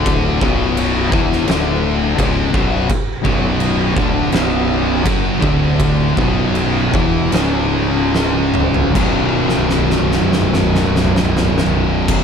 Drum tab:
CC |x-------x-------x-------x-------|x-------x-------x-------x-------|x-------x-------x---------------|x-----------------------------x-|
SD |--------------o-o---------------|----------------o---------------|----------------o-------o-------|-----o-o-o-o-o-o-o-o-o-o-o------|
T2 |--------------------------------|--------------------------------|----------------------------o---|--------------------------------|
FT |--------------------------------|--------------------------------|------------------------------o-|----o-o-o-o-o-o-o-o-o-o-o-o-----|
BD |o---o-------o-----------o---o---|o---o-------o-----------o---o---|o---o-------o-------------------|o-----------------------------o-|